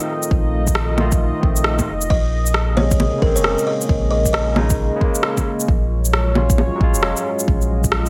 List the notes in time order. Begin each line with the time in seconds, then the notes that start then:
Already playing: D#3 A3 C4 D#4 F4 D#5
0.23 shaker
0.31 A#1, kick
0.67 kick, shaker
0.75 cross-stick
0.96 D#3 A3 F4, cross-stick, low bongo
1.12 kick, shaker
1.41 A#1 D#3 A3, kick
1.45 C4
1.56 shaker
1.64 cross-stick
1.77 D#3 A3, kick, low bongo, shaker
1.81 F4
1.88 F1
2.01 shaker
2.10 A#1 A#3 G#4 D#5, kick
2.46 shaker
2.54 cross-stick
2.75 C#3 G#3 C#5, low bongo
2.79 C3
2.91 kick, shaker
3.00 low bongo
3.18 C#3
3.22 A#1 G#3 A#4, kick
3.26 C4
3.36 F1 C#5, shaker
3.44 cross-stick
3.58 shaker
3.67 D#5
3.81 shaker
3.89 A#1, kick
4.11 D#5
4.26 kick, shaker
4.33 D#5, cross-stick
4.54 C#3 G#3 D#4, cross-stick, low bongo
4.70 kick, shaker
4.96 C#3
5.00 G#3 A#3, kick
5.15 shaker
5.23 cross-stick
5.37 kick, low bongo, shaker
5.60 shaker
5.68 A#1 F#3 G#3 F4 C#5, kick
6.05 shaker
6.14 cross-stick
6.33 F#3 G#3 C#4, low bongo
6.37 F4
6.50 kick, shaker
6.58 low bongo
6.75 F#3 G#3
6.80 A#1 C#4 F4, kick
6.94 F1, shaker
7.03 cross-stick
7.17 shaker
7.39 shaker
7.48 A#1 D#5, kick
7.61 shaker
7.84 kick, shaker
7.92 cross-stick
8.06 shaker